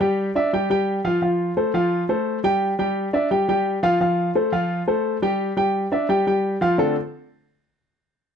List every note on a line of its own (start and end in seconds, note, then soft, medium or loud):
0.01 0.29 G3 loud
0.01 0.29 G4 loud
0.01 0.29 G5 medium
0.35 0.50 D4 medium
0.35 0.50 D5 medium
0.35 0.50 E5 medium
0.53 0.67 G3 medium
0.53 0.67 G4 medium
0.53 0.68 G5 loud
0.70 0.99 G3 medium
0.70 0.99 G4 medium
0.70 0.99 G5 loud
1.04 1.19 F3 medium
1.04 1.19 F4 medium
1.04 1.19 F5 loud
1.22 1.50 F3 medium
1.22 1.51 F4 medium
1.22 1.51 F5 medium
1.57 1.71 A3 medium
1.57 1.71 A4 medium
1.57 1.71 C5 medium
1.74 2.03 F3 loud
1.74 2.03 F4 medium
1.74 2.03 F5 loud
2.09 2.38 A3 medium
2.09 2.38 A4 medium
2.09 2.38 C5 medium
2.44 2.72 G3 medium
2.44 2.72 G4 medium
2.44 2.73 G5 loud
2.79 3.07 G3 loud
2.79 3.08 G4 medium
2.79 3.08 G5 medium
3.13 3.28 D4 medium
3.13 3.28 D5 medium
3.13 3.28 E5 medium
3.31 3.45 G3 medium
3.31 3.45 G4 medium
3.31 3.45 G5 medium
3.49 3.77 G3 loud
3.49 3.77 G4 loud
3.49 3.77 G5 loud
3.83 3.97 F3 loud
3.83 3.97 F4 loud
3.83 3.98 F5 loud
4.01 4.29 F3 medium
4.01 4.29 F4 medium
4.01 4.29 F5 medium
4.35 4.50 A3 medium
4.35 4.50 A4 medium
4.35 4.50 C5 medium
4.52 4.81 F3 loud
4.52 4.81 F4 medium
4.52 4.81 F5 loud
4.88 5.16 A3 medium
4.88 5.16 A4 medium
4.88 5.16 C5 medium
5.22 5.51 G3 loud
5.22 5.51 G4 loud
5.22 5.51 G5 loud
5.57 5.85 G3 medium
5.57 5.85 G4 medium
5.57 5.86 G5 loud
5.92 6.06 D4 medium
5.92 6.06 D5 medium
5.92 6.06 E5 medium
6.09 6.23 G3 loud
6.09 6.24 G4 medium
6.09 6.24 G5 loud
6.27 6.55 G3 medium
6.27 6.55 G4 medium
6.27 6.56 G5 medium
6.61 6.75 F3 loud
6.61 6.76 F4 medium
6.61 6.76 F5 loud
6.78 6.95 D3 medium
6.78 6.95 A3 medium
6.78 6.95 C4 medium
6.78 6.95 D4 medium
6.78 6.95 F4 medium
6.78 6.95 A4 loud